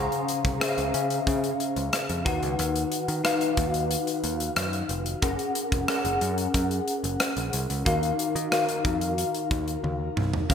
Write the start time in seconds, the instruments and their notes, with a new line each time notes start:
Already playing: tine electric piano C#3 C#4 G#4 C5 F5 F#5
0.12 closed hi-hat
0.28 closed hi-hat
0.45 picked electric bass C2, kick, closed hi-hat
0.60 tine electric piano C#4 G#4 C5 E5, cross-stick, closed hi-hat
0.68 tine electric piano F5
0.78 picked electric bass C#2, closed hi-hat
0.94 picked electric bass C#3, closed hi-hat
1.10 closed hi-hat
1.27 picked electric bass C#3, kick, closed hi-hat
1.44 closed hi-hat
1.60 closed hi-hat
1.76 picked electric bass C#2, closed hi-hat
1.93 cross-stick, closed hi-hat
2.09 picked electric bass F2, closed hi-hat
2.25 picked electric bass D#2, tine electric piano D#3 D#4 F#4 B4 F#5, kick, closed hi-hat
2.42 picked electric bass C#2, closed hi-hat
2.59 picked electric bass D#2, closed hi-hat
2.76 closed hi-hat
2.92 closed hi-hat
3.08 picked electric bass D#3, closed hi-hat
3.24 tine electric piano D#4 F#4 B4 F5, cross-stick, closed hi-hat
3.41 closed hi-hat
3.57 picked electric bass D#2, kick, closed hi-hat
3.74 closed hi-hat
3.91 closed hi-hat
4.07 closed hi-hat
4.24 picked electric bass D#2, closed hi-hat
4.40 closed hi-hat
4.56 picked electric bass F#2, cross-stick, closed hi-hat
4.73 closed hi-hat
4.89 picked electric bass F1, closed hi-hat
5.06 closed hi-hat
5.22 picked electric bass F#1, tine electric piano C#4 G#4 A#4 F#5, kick, closed hi-hat
5.39 closed hi-hat
5.55 closed hi-hat
5.72 picked electric bass F1, kick, closed hi-hat
5.88 tine electric piano C#4 G#4 A#4 F#5, cross-stick, closed hi-hat
6.05 picked electric bass F#1, closed hi-hat
6.21 picked electric bass F#2, closed hi-hat
6.38 closed hi-hat
6.54 picked electric bass F#2, kick, closed hi-hat
6.71 closed hi-hat
6.88 closed hi-hat
7.04 picked electric bass F#1, closed hi-hat
7.20 cross-stick, closed hi-hat
7.37 picked electric bass A#1, closed hi-hat
7.53 picked electric bass C2, closed hi-hat
7.70 picked electric bass C#2, closed hi-hat
7.85 picked electric bass D#2, tine electric piano D#3 D#4 F#4 A#4 F5, kick, closed hi-hat
8.03 closed hi-hat
8.19 closed hi-hat
8.35 picked electric bass D#3, closed hi-hat
8.51 tine electric piano D#4 F#4 A#4 F5, cross-stick, closed hi-hat
8.69 closed hi-hat
8.85 picked electric bass F2, kick, closed hi-hat
9.01 closed hi-hat
9.18 closed hi-hat
9.35 closed hi-hat
9.51 picked electric bass D#2, kick, closed hi-hat
9.68 closed hi-hat
9.84 picked electric bass D#2, high tom
10.17 picked electric bass C2, mid tom
10.33 floor tom
10.49 picked electric bass C#2, tine electric piano C#3 C#4 G#4 C5 F5, kick, closed hi-hat